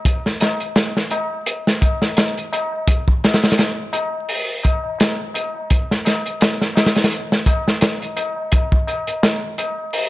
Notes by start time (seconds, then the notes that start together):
0.05 kick, closed hi-hat, tabla na
0.26 snare
0.40 snare, closed hi-hat, tabla na
0.60 closed hi-hat, tabla na
0.76 snare, closed hi-hat, tabla na
0.97 snare
1.10 closed hi-hat, tabla na
1.31 tabla na
1.46 closed hi-hat, tabla na
1.67 snare
1.81 kick, closed hi-hat, tabla na
2.02 snare, tabla na
2.17 snare, closed hi-hat, tabla na
2.36 closed hi-hat, tabla na
2.52 closed hi-hat, tabla na
2.72 tabla na
2.87 kick, closed hi-hat, tabla na
3.08 kick
3.24 snare, closed hi-hat, tabla na
3.34 snare, closed hi-hat
3.43 snare, closed hi-hat, tabla na
3.51 snare, closed hi-hat
3.58 snare, closed hi-hat, tabla na
3.93 closed hi-hat, tabla na
4.13 tabla na
4.29 open hi-hat, tabla na
4.63 kick, closed hi-hat, tabla na
4.84 tabla na
4.98 snare, closed hi-hat, tabla na
5.18 tabla na
5.34 closed hi-hat, tabla na
5.54 tabla na
5.70 kick, closed hi-hat, tabla na
5.91 snare
6.05 snare, closed hi-hat, tabla na
6.25 closed hi-hat, tabla na
6.40 snare, closed hi-hat, tabla na
6.61 snare
6.75 snare, closed hi-hat, tabla na
6.86 snare, closed hi-hat
6.95 snare, closed hi-hat, tabla na
7.04 snare, closed hi-hat
7.11 closed hi-hat, tabla na
7.32 snare
7.46 kick, closed hi-hat, tabla na
7.66 snare, tabla na
7.81 snare, closed hi-hat, tabla na
8.00 closed hi-hat, tabla na
8.16 closed hi-hat, tabla na
8.36 tabla na
8.52 kick, closed hi-hat, tabla na
8.72 kick, tabla na
8.87 closed hi-hat, tabla na
9.07 closed hi-hat, tabla na
9.23 snare, closed hi-hat, tabla na
9.58 closed hi-hat, tabla na
9.79 tabla na
9.93 open hi-hat, tabla na